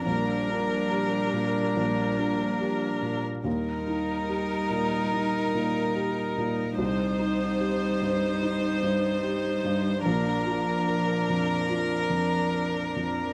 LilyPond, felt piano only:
\new Staff \with { instrumentName = "Felt piano" } { \clef bass \time 4/4 \key g \minor \tempo 4 = 72 bes,,8 d'8 g'8 bes,8 bes,,8 d'8 g'8 bes,8 | ees,8 ees'8 g'8 bes,8 ees'8 bes,8 g'8 bes,8 | c,8 ees'8 g'8 g,8 ees'8 g,8 g'8 g,8 | bes,,8 f'8 bes'8 f,8 f'8 f,8 bes'8 f,8 | }